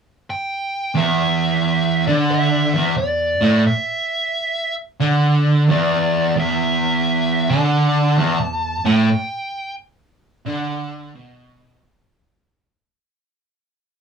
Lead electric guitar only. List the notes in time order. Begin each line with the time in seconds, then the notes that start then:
0.30 G5
0.97 E5
2.07 D5
2.31 E5
2.98 D5
3.67 E5
5.71 D5
6.40 E5
7.50 A5
8.87 G5